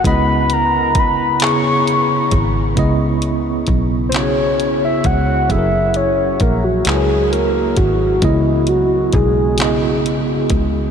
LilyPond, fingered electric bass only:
\new Staff \with { instrumentName = "Fingered electric bass" } { \clef bass \time 6/8 \key cis \dorian \tempo 4. = 44 cis,4. dis,4 gis,,8 | cis,4 b,,4. cis,8 | fis,,4 ais,,8 cis,4 gis,,8 | cis,4 b,,4. cis,8 | }